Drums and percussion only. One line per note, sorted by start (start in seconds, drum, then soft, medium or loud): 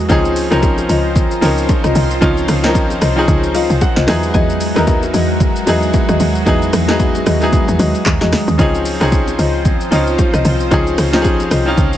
0.10 kick loud
0.10 low conga medium
0.10 shaker medium
0.25 shaker medium
0.36 open hi-hat medium
0.36 shaker loud
0.52 cross-stick loud
0.52 shaker medium
0.63 kick loud
0.63 high bongo medium
0.63 shaker medium
0.78 high bongo medium
0.78 shaker medium
0.89 open hi-hat medium
0.89 shaker medium
1.15 kick loud
1.15 low conga medium
1.15 shaker medium
1.31 shaker medium
1.42 open hi-hat medium
1.42 high bongo medium
1.42 low bongo medium
1.42 shaker medium
1.58 shaker medium
1.69 kick loud
1.69 high bongo medium
1.69 low bongo medium
1.69 shaker medium
1.84 cross-stick medium
1.84 shaker medium
1.95 open hi-hat soft
1.95 low conga medium
1.95 shaker medium
2.11 shaker medium
2.22 kick loud
2.22 low conga medium
2.22 shaker medium
2.37 shaker medium
2.48 cross-stick loud
2.48 open hi-hat medium
2.48 shaker loud
2.64 snare medium
2.64 shaker medium
2.75 kick loud
2.75 high bongo medium
2.75 shaker medium
2.90 high bongo medium
2.90 shaker medium
3.02 cross-stick loud
3.02 open hi-hat medium
3.02 shaker medium
3.28 kick loud
3.28 low conga medium
3.28 shaker medium
3.43 shaker medium
3.55 open hi-hat medium
3.55 high bongo medium
3.55 low bongo medium
3.55 shaker medium
3.70 shaker medium
3.81 kick loud
3.81 high bongo medium
3.81 low bongo medium
3.81 shaker medium
3.96 snare medium
3.96 shaker medium
4.08 cross-stick loud
4.08 snare medium
4.08 open hi-hat soft
4.08 low conga medium
4.08 shaker medium
4.23 shaker medium
4.34 kick loud
4.34 low conga medium
4.34 shaker medium
4.50 shaker medium
4.61 open hi-hat medium
4.61 shaker loud
4.76 cross-stick loud
4.76 shaker medium
4.87 kick loud
4.87 high bongo medium
4.87 shaker medium
5.03 high bongo medium
5.03 shaker medium
5.14 open hi-hat medium
5.14 shaker medium
5.40 kick loud
5.40 low conga medium
5.40 shaker medium
5.56 shaker medium
5.67 open hi-hat medium
5.67 high bongo medium
5.67 low bongo medium
5.67 shaker medium
5.82 shaker medium
5.94 kick loud
5.94 high bongo medium
5.94 low bongo medium
5.94 shaker medium
6.09 cross-stick medium
6.09 shaker medium
6.20 open hi-hat soft
6.20 low conga medium
6.20 shaker medium
6.35 shaker medium
6.47 kick loud
6.47 low conga medium
6.47 shaker medium
6.62 shaker medium
6.73 cross-stick loud
6.73 open hi-hat medium
6.73 shaker loud
6.89 snare medium
6.89 shaker medium
7.00 kick loud
7.00 high bongo medium
7.00 shaker medium
7.15 high bongo medium
7.15 shaker medium
7.26 cross-stick loud
7.26 open hi-hat soft
7.26 shaker medium
7.41 shaker medium
7.52 kick loud
7.52 low conga medium
7.52 shaker medium
7.68 shaker medium
7.79 open hi-hat medium
7.79 high bongo medium
7.79 low bongo medium
7.79 shaker medium
7.95 shaker medium
8.06 kick loud
8.06 clap loud
8.06 high bongo medium
8.06 low bongo medium
8.06 shaker medium
8.21 snare medium
8.21 shaker medium
8.32 cross-stick loud
8.32 snare medium
8.32 open hi-hat soft
8.32 low conga medium
8.32 shaker medium
8.48 shaker medium
8.59 kick loud
8.59 low conga medium
8.59 shaker medium
8.75 shaker medium
8.85 open hi-hat medium
8.85 shaker loud
9.01 cross-stick loud
9.01 shaker medium
9.12 kick loud
9.12 high bongo medium
9.12 shaker medium
9.27 high bongo medium
9.27 shaker medium
9.39 open hi-hat soft
9.39 shaker medium
9.65 kick loud
9.65 low conga medium
9.65 shaker medium
9.81 shaker medium
9.92 open hi-hat medium
9.92 high bongo soft
9.92 low bongo medium
9.92 shaker medium
10.07 shaker medium
10.19 kick loud
10.19 high bongo medium
10.19 low bongo medium
10.19 shaker medium
10.34 cross-stick medium
10.34 shaker medium
10.45 open hi-hat soft
10.45 low conga medium
10.45 shaker medium
10.60 shaker medium
10.71 kick loud
10.71 low conga medium
10.71 shaker medium
10.87 shaker medium
10.98 cross-stick loud
10.98 open hi-hat medium
10.98 shaker loud
11.13 snare medium
11.13 shaker medium
11.24 kick loud
11.24 high bongo medium
11.24 shaker medium
11.40 high bongo medium
11.40 shaker medium
11.51 cross-stick loud
11.51 open hi-hat medium
11.51 shaker medium
11.77 kick loud
11.77 low conga medium
11.77 shaker medium
11.93 shaker medium